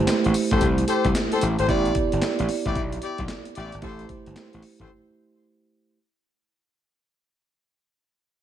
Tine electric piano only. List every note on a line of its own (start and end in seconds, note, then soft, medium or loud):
0.00 1.64 A3 medium
0.00 1.65 E4 medium
0.00 1.65 G4 medium
0.00 1.69 C5 medium
1.68 3.79 B3 medium
1.68 3.79 E4 medium
1.68 3.79 G4 medium
1.68 3.80 D5 medium
3.82 5.93 A3 medium
3.82 5.93 E4 medium
3.82 5.93 G4 medium
3.82 5.94 C5 medium